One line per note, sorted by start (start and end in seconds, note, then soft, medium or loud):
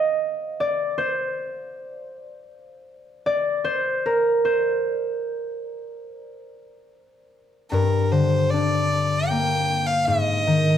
0.00 0.69 C5 medium
0.00 0.66 D#5 medium
0.60 2.45 D5 medium
0.98 2.96 C5 medium
3.26 5.11 D5 loud
3.64 4.44 C5 medium
4.06 6.18 A#4 medium
4.45 6.83 C5 medium
7.71 10.13 G2 medium
7.71 8.13 A#4 medium
8.12 10.13 D3 soft
8.12 8.52 C5 medium
8.50 10.53 D4 soft
8.50 9.30 D5 medium
9.29 10.78 A#3 soft
9.29 9.88 G5 medium
9.86 10.07 F5 medium
10.06 10.78 G#2 medium
10.06 10.78 D#5 medium
10.47 10.78 D#3 soft